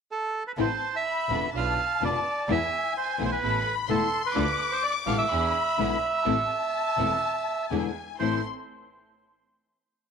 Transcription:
0.11 A4
0.47 B4
0.57 A1 C3 E3 B3 C4 E4 A4 B4 C5 A5
0.96 E5
1.05 B5
1.29 E1 B2 D3 B3 C4 D4 F4 A4 B4
1.52 B1 D4 F4 B4 A5
1.57 F5
2.01 F1 B2 D3 B3 D4 F4 B4 D5
2.48 E2 B2 E3 G#3 B3 E4 G#4 E5 G#5
2.97 C5
3.18 B1 E3 A3 B3 E4 G#4
3.25 C5
3.32 B4
3.42 A1 B3 E4 A4 B5
3.88 E1 E3 A3 B3 E4 A4 C6
4.26 B4
4.35 D2 D3 A3 D4 F4 A4 D6
4.72 C5
4.83 D5
5.06 A1 B2 D3 G#3 B3 D4 E4 F4 A4 F5
5.18 E5
5.29 E2 D4 E4 G#4 B5
5.78 B1 B2 D3 G#3 B3 D4 E4 G#4
6.18 B5
6.24 A1 E3 A3 C4 E4 A4 A5
6.97 E1 E3 A3 C4 E4 A4
7.70 E2 B2 D3 G#3 B3 D4 E4 G#4 G#5
8.19 A1 A2 E3 A3 C4 E4 A4 C5 C6

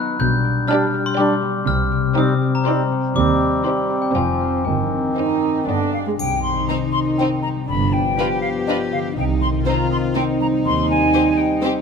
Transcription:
Already playing: D#3 F#3 B3 D#4 B4 F#6
0.19 B1 B2 G3 D4 G6
0.44 G4
0.68 G3 B3 D4 G4 D5 F6
0.94 G4
1.06 C6
1.17 G3 D4 G4 D5 D6
1.42 B3
1.66 C2 C3 C4 F6
1.92 G4
2.16 G3 C4 D#4 G4 C5 D#6
2.42 G4
2.55 A#5
2.66 G3 C4 D#4 G4 C5 C6
2.92 G3
3.15 D#2 D#3 G3 C4 D6
3.40 G4
3.64 G3 C4 D#4 G4 C5 C6
3.90 G4
4.02 G5
4.14 F1 F2 F3 C4 F4 C5 G#5
4.40 F4 C5
4.65 G1 G2 D#3 C4 G5
4.91 D#4
5.16 G3 D#4 C5
5.42 D#4
5.67 G1 G2 D3 B3 D4 D5 D#5
5.92 D4 D5 F5
6.07 G#3
6.18 C2 C3 D#3 C4 D#4 G5, triangle
6.43 C4 C6
6.68 C4 D#4 C5 A#5
6.92 D#4 C6
7.18 C4 D#4 C5 G5
7.42 G3 A#5
7.68 G1 G2 F3 B3 D4 B5
7.93 D4 G5
8.18 D4 F4 G4 B4
8.41 D5 F5
8.66 D4 F4 B4 D#5
8.92 D3 F5
9.16 C2 C3 D#3 C4 D#4 G5
9.41 C4 C6
9.65 C4 D#4 F4 C5 A#5
9.91 D#4 C6
10.15 C4 D#4 C5 G5
10.40 G3 A#5
10.64 D#2 D#3 G3 C6
10.89 D#4 G#5
11.14 C4 G4 C5
11.37 D#5 G5
11.62 C4 G4 C5

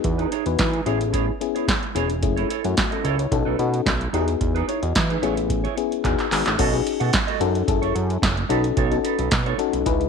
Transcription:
Already playing: B3 D#4 F#4 G#4
0.04 E2, muted clean electric guitar stroke, kick, closed hi-hat
0.18 D#4 G#4 B4, closed hi-hat
0.31 D#4 G#4 C#5, closed hi-hat
0.46 E2 B3 D#4 F#4 B4, muted clean electric guitar stroke, closed hi-hat
0.59 E3, kick, snare, clap, closed hi-hat
0.73 D#4 G#4 B4, closed hi-hat
0.86 A1 B3 C#4 E4 G#4 C#5, closed hi-hat
1.00 muted clean electric guitar stroke, closed hi-hat
1.13 E4 G#4 C#5, kick, closed hi-hat
1.27 muted clean electric guitar stroke
1.40 B3 C#4 E4 G#4, muted clean electric guitar stroke, closed hi-hat
1.55 E4 G#4 C#5, closed hi-hat
1.68 muted clean electric guitar stroke, kick, snare, clap, closed hi-hat
1.82 muted clean electric guitar stroke, closed hi-hat
1.95 E1 B3 C#4 E4 G#4 C#5, closed hi-hat
2.09 muted clean electric guitar stroke, closed hi-hat
2.22 F#1 A3 C#4 E4 G#4, muted clean electric guitar stroke, kick, closed hi-hat
2.36 E4 A4 C#5, closed hi-hat
2.49 E4 A4 C#5, closed hi-hat
2.64 F#2 A3 C#4 E4 F#4, muted clean electric guitar stroke, closed hi-hat
2.77 A3, muted clean electric guitar stroke, kick, snare, clap, closed hi-hat
2.91 C#4 E4 A4 D#5, closed hi-hat
3.04 C#2 E4 A4 C#5, closed hi-hat
3.18 E4 C#5, muted clean electric guitar stroke, closed hi-hat
3.31 B1 C#4 D#4 F#4 A4, muted clean electric guitar stroke, kick, closed hi-hat
3.45 B1 D#4 A4 B4
3.58 B2 C#4 D#4 F#4 A4, muted clean electric guitar stroke, closed hi-hat
3.73 muted clean electric guitar stroke, closed hi-hat
3.86 B1, muted clean electric guitar stroke, kick, snare, clap, closed hi-hat
4.00 muted clean electric guitar stroke, closed hi-hat
4.13 E2 B3 D#4 F#4 G4 G#4 B4, closed hi-hat
4.21 G#4
4.27 muted clean electric guitar stroke, closed hi-hat
4.40 E2, muted clean electric guitar stroke, kick, closed hi-hat
4.55 D#4 G#4 B4, closed hi-hat
4.68 D#4 E4 G#4 C#5, closed hi-hat
4.82 E2 F#4 D#5, muted clean electric guitar stroke, closed hi-hat
4.95 E3, kick, snare, clap, closed hi-hat
5.09 D#4 G#4 B4, closed hi-hat
5.22 A1 B3 C#4 E4 G#4 C#5, closed hi-hat
5.37 muted clean electric guitar stroke, closed hi-hat
5.49 muted clean electric guitar stroke, kick, closed hi-hat
5.64 E4 G#4 C#5, closed hi-hat
5.77 B3 C#4 E4 G#4, muted clean electric guitar stroke, closed hi-hat
5.91 muted clean electric guitar stroke, closed hi-hat
6.04 E1 B3 D#4 F#4 G#4, muted clean electric guitar stroke, kick, clap, closed hi-hat
6.18 muted clean electric guitar stroke, clap, closed hi-hat
6.31 G#1 B3 D#4 F#4 G#4, clap, open hi-hat
6.46 A1, muted clean electric guitar stroke, clap, closed hi-hat
6.58 B1 C#4 D#4 F#4 A4 D#5, kick, closed hi-hat, crash
6.73 C#4 D#4 F#4 G#4, muted clean electric guitar stroke, closed hi-hat
6.86 muted clean electric guitar stroke, closed hi-hat
7.00 B2 F#4 A4 F#5, closed hi-hat
7.13 muted clean electric guitar stroke, kick, snare, clap, closed hi-hat
7.27 F#4 A4 D#5, closed hi-hat
7.40 F#2 C#4 D#4 F#4 A4, muted clean electric guitar stroke, closed hi-hat
7.55 muted clean electric guitar stroke, closed hi-hat
7.68 F#1 C#4 E4 G#4 A4, muted clean electric guitar stroke, kick, closed hi-hat
7.82 F#1 E4 A4 C#5, closed hi-hat
7.95 F#2, muted clean electric guitar stroke, closed hi-hat
8.09 muted clean electric guitar stroke, closed hi-hat
8.22 F#1, kick, snare, clap, closed hi-hat
8.37 muted clean electric guitar stroke, closed hi-hat
8.49 B1 C#4 D#4 F#4 A4 B4, closed hi-hat
8.64 muted clean electric guitar stroke, closed hi-hat
8.77 B1 D#4 A4 C#5, kick, closed hi-hat
8.91 C#4 D#4 F#4 A4, closed hi-hat
9.04 D#4 A4 B4, closed hi-hat
9.18 B1 D#4 A4 B4, closed hi-hat
9.31 B2, muted clean electric guitar stroke, kick, snare, clap, closed hi-hat
9.46 D#4 A4 C#5, closed hi-hat
9.58 C#4 D#4 F#4 A4, muted clean electric guitar stroke, closed hi-hat
9.73 B1, muted clean electric guitar stroke, closed hi-hat
9.86 C#2 D#4 E4 G#4 B4, muted clean electric guitar stroke, kick, closed hi-hat
10.00 muted clean electric guitar stroke, closed hi-hat

